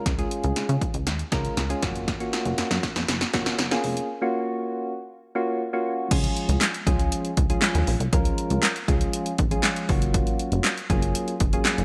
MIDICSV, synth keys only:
0, 0, Header, 1, 2, 480
1, 0, Start_track
1, 0, Key_signature, -5, "major"
1, 0, Tempo, 504202
1, 58, Time_signature, 4, 2, 24, 8
1, 11277, End_track
2, 0, Start_track
2, 0, Title_t, "Synth keys"
2, 0, Program_c, 0, 88
2, 175, Note_on_c, 0, 56, 93
2, 177, Note_on_c, 0, 61, 88
2, 178, Note_on_c, 0, 65, 88
2, 181, Note_on_c, 0, 68, 102
2, 847, Note_off_c, 0, 56, 0
2, 848, Note_off_c, 0, 61, 0
2, 849, Note_off_c, 0, 65, 0
2, 850, Note_off_c, 0, 68, 0
2, 1254, Note_on_c, 0, 56, 100
2, 1255, Note_on_c, 0, 61, 88
2, 1257, Note_on_c, 0, 65, 89
2, 1259, Note_on_c, 0, 70, 106
2, 1508, Note_off_c, 0, 56, 0
2, 1508, Note_off_c, 0, 61, 0
2, 1509, Note_off_c, 0, 65, 0
2, 1510, Note_off_c, 0, 70, 0
2, 1615, Note_on_c, 0, 56, 94
2, 1617, Note_on_c, 0, 61, 86
2, 1619, Note_on_c, 0, 65, 81
2, 1621, Note_on_c, 0, 68, 99
2, 1726, Note_off_c, 0, 61, 0
2, 1727, Note_off_c, 0, 65, 0
2, 1735, Note_on_c, 0, 58, 86
2, 1737, Note_off_c, 0, 56, 0
2, 1737, Note_on_c, 0, 61, 80
2, 1739, Note_off_c, 0, 68, 0
2, 1739, Note_on_c, 0, 65, 84
2, 1740, Note_on_c, 0, 66, 93
2, 2024, Note_off_c, 0, 58, 0
2, 2025, Note_off_c, 0, 61, 0
2, 2026, Note_off_c, 0, 65, 0
2, 2027, Note_off_c, 0, 66, 0
2, 2095, Note_on_c, 0, 58, 98
2, 2096, Note_on_c, 0, 61, 90
2, 2098, Note_on_c, 0, 65, 84
2, 2100, Note_on_c, 0, 66, 106
2, 2767, Note_off_c, 0, 58, 0
2, 2768, Note_off_c, 0, 61, 0
2, 2769, Note_off_c, 0, 65, 0
2, 2770, Note_off_c, 0, 66, 0
2, 3175, Note_on_c, 0, 58, 98
2, 3176, Note_on_c, 0, 61, 92
2, 3179, Note_on_c, 0, 65, 92
2, 3180, Note_on_c, 0, 66, 107
2, 3428, Note_off_c, 0, 58, 0
2, 3429, Note_off_c, 0, 61, 0
2, 3430, Note_off_c, 0, 65, 0
2, 3430, Note_off_c, 0, 66, 0
2, 3535, Note_on_c, 0, 58, 94
2, 3537, Note_on_c, 0, 61, 85
2, 3539, Note_on_c, 0, 65, 89
2, 3540, Note_on_c, 0, 68, 109
2, 3872, Note_off_c, 0, 58, 0
2, 3873, Note_off_c, 0, 61, 0
2, 3874, Note_off_c, 0, 65, 0
2, 3875, Note_off_c, 0, 68, 0
2, 4013, Note_on_c, 0, 58, 99
2, 4016, Note_on_c, 0, 61, 95
2, 4017, Note_on_c, 0, 65, 90
2, 4019, Note_on_c, 0, 66, 112
2, 4686, Note_off_c, 0, 58, 0
2, 4688, Note_off_c, 0, 61, 0
2, 4688, Note_off_c, 0, 65, 0
2, 4689, Note_off_c, 0, 66, 0
2, 5095, Note_on_c, 0, 58, 102
2, 5095, Note_on_c, 0, 61, 90
2, 5098, Note_on_c, 0, 65, 95
2, 5099, Note_on_c, 0, 66, 109
2, 5348, Note_off_c, 0, 58, 0
2, 5348, Note_off_c, 0, 61, 0
2, 5349, Note_off_c, 0, 65, 0
2, 5350, Note_off_c, 0, 66, 0
2, 5455, Note_on_c, 0, 58, 98
2, 5456, Note_on_c, 0, 61, 87
2, 5458, Note_on_c, 0, 65, 91
2, 5459, Note_on_c, 0, 66, 107
2, 5792, Note_off_c, 0, 58, 0
2, 5792, Note_off_c, 0, 61, 0
2, 5794, Note_off_c, 0, 65, 0
2, 5794, Note_off_c, 0, 66, 0
2, 5818, Note_on_c, 0, 53, 96
2, 5819, Note_on_c, 0, 56, 88
2, 5819, Note_on_c, 0, 61, 88
2, 5821, Note_on_c, 0, 65, 91
2, 5822, Note_on_c, 0, 68, 106
2, 6321, Note_off_c, 0, 53, 0
2, 6321, Note_off_c, 0, 56, 0
2, 6322, Note_off_c, 0, 61, 0
2, 6323, Note_off_c, 0, 65, 0
2, 6323, Note_off_c, 0, 68, 0
2, 6536, Note_on_c, 0, 53, 96
2, 6537, Note_on_c, 0, 56, 93
2, 6538, Note_on_c, 0, 61, 94
2, 6540, Note_on_c, 0, 65, 90
2, 6540, Note_on_c, 0, 68, 108
2, 6956, Note_off_c, 0, 53, 0
2, 6957, Note_off_c, 0, 56, 0
2, 6957, Note_off_c, 0, 61, 0
2, 6958, Note_off_c, 0, 65, 0
2, 6958, Note_off_c, 0, 68, 0
2, 7137, Note_on_c, 0, 53, 89
2, 7138, Note_on_c, 0, 56, 83
2, 7138, Note_on_c, 0, 61, 85
2, 7141, Note_on_c, 0, 65, 81
2, 7142, Note_on_c, 0, 68, 101
2, 7557, Note_off_c, 0, 53, 0
2, 7557, Note_off_c, 0, 56, 0
2, 7557, Note_off_c, 0, 61, 0
2, 7558, Note_off_c, 0, 65, 0
2, 7559, Note_off_c, 0, 68, 0
2, 7735, Note_on_c, 0, 53, 94
2, 7737, Note_on_c, 0, 56, 89
2, 7737, Note_on_c, 0, 61, 89
2, 7739, Note_on_c, 0, 65, 90
2, 7739, Note_on_c, 0, 70, 106
2, 8240, Note_off_c, 0, 53, 0
2, 8241, Note_off_c, 0, 56, 0
2, 8241, Note_off_c, 0, 61, 0
2, 8241, Note_off_c, 0, 65, 0
2, 8242, Note_off_c, 0, 70, 0
2, 8454, Note_on_c, 0, 53, 97
2, 8456, Note_on_c, 0, 56, 93
2, 8457, Note_on_c, 0, 61, 92
2, 8458, Note_on_c, 0, 65, 90
2, 8460, Note_on_c, 0, 68, 104
2, 8875, Note_off_c, 0, 53, 0
2, 8876, Note_off_c, 0, 56, 0
2, 8876, Note_off_c, 0, 61, 0
2, 8877, Note_off_c, 0, 65, 0
2, 8878, Note_off_c, 0, 68, 0
2, 9054, Note_on_c, 0, 53, 91
2, 9056, Note_on_c, 0, 56, 84
2, 9056, Note_on_c, 0, 61, 79
2, 9058, Note_on_c, 0, 65, 78
2, 9058, Note_on_c, 0, 68, 101
2, 9404, Note_off_c, 0, 61, 0
2, 9405, Note_off_c, 0, 65, 0
2, 9413, Note_on_c, 0, 54, 87
2, 9414, Note_on_c, 0, 58, 84
2, 9416, Note_off_c, 0, 53, 0
2, 9416, Note_on_c, 0, 61, 83
2, 9417, Note_off_c, 0, 56, 0
2, 9417, Note_on_c, 0, 65, 83
2, 9418, Note_off_c, 0, 68, 0
2, 9418, Note_on_c, 0, 66, 100
2, 10184, Note_off_c, 0, 54, 0
2, 10184, Note_off_c, 0, 58, 0
2, 10185, Note_off_c, 0, 61, 0
2, 10185, Note_off_c, 0, 65, 0
2, 10186, Note_off_c, 0, 66, 0
2, 10374, Note_on_c, 0, 54, 99
2, 10375, Note_on_c, 0, 58, 88
2, 10377, Note_on_c, 0, 61, 96
2, 10378, Note_on_c, 0, 65, 93
2, 10380, Note_on_c, 0, 68, 110
2, 10795, Note_off_c, 0, 54, 0
2, 10796, Note_off_c, 0, 58, 0
2, 10797, Note_off_c, 0, 61, 0
2, 10797, Note_off_c, 0, 65, 0
2, 10798, Note_off_c, 0, 68, 0
2, 10977, Note_on_c, 0, 54, 88
2, 10978, Note_on_c, 0, 58, 82
2, 10979, Note_on_c, 0, 61, 78
2, 10981, Note_on_c, 0, 65, 83
2, 10981, Note_on_c, 0, 68, 99
2, 11277, Note_off_c, 0, 54, 0
2, 11277, Note_off_c, 0, 58, 0
2, 11277, Note_off_c, 0, 61, 0
2, 11277, Note_off_c, 0, 65, 0
2, 11277, Note_off_c, 0, 68, 0
2, 11277, End_track
0, 0, End_of_file